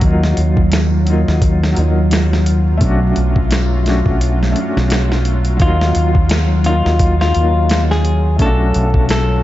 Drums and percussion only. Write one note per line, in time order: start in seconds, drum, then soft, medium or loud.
0.01 kick loud
0.01 closed hi-hat medium
0.24 snare soft
0.37 closed hi-hat medium
0.57 kick medium
0.72 snare loud
0.72 closed hi-hat medium
1.07 closed hi-hat medium
1.28 snare soft
1.42 kick loud
1.42 closed hi-hat medium
1.64 snare medium
1.77 closed hi-hat medium
2.11 snare loud
2.11 closed hi-hat medium
2.33 snare medium
2.46 closed hi-hat medium
2.81 kick loud
2.81 closed hi-hat medium
3.16 closed hi-hat medium
3.36 kick loud
3.51 snare loud
3.51 closed hi-hat loud
3.86 snare soft
3.86 closed hi-hat medium
4.06 kick medium
4.21 closed hi-hat medium
4.43 snare soft
4.56 closed hi-hat medium
4.77 snare soft
4.90 snare loud
4.90 closed hi-hat medium
5.12 snare medium
5.25 closed hi-hat medium
5.45 closed hi-hat soft
5.60 kick loud
5.60 closed hi-hat medium
5.81 snare medium
5.95 closed hi-hat medium
6.15 kick medium
6.29 snare loud
6.29 closed hi-hat medium
6.64 closed hi-hat medium
6.86 snare soft
6.99 kick loud
6.99 closed hi-hat medium
7.21 snare medium
7.35 closed hi-hat medium
7.69 snare loud
7.69 closed hi-hat medium
7.91 snare medium
8.05 closed hi-hat medium
8.39 kick loud
8.39 closed hi-hat medium
8.74 closed hi-hat medium
8.94 kick loud
9.09 snare loud
9.09 closed hi-hat medium